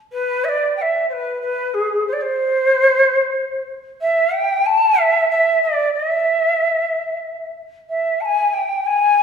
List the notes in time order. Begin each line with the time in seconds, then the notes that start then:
0.12 B4
0.44 E5
0.49 D5
0.77 G5
0.82 E5
1.09 B4 C5
1.42 B4
1.74 G#4
2.07 C5
2.13 D5
2.21 C5
4.01 E5
4.34 G5
4.66 A5
4.99 E5
5.31 E5
5.63 D5
5.94 E5
7.89 E5
8.21 A5
8.25 G#5
8.53 G5
8.86 G#5